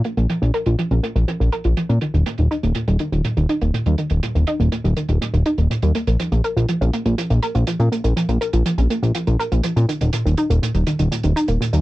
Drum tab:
HH |xxxxxxxxxxxxxxxx|xxxxxxxxxxxxxxxx|xxxxxxxxxxxxxxxx|xxxxxxxxxxxxxxxx|

HH |xxxxxxxxxxxxxxxx|xxxxxxxxxxxxxxxx|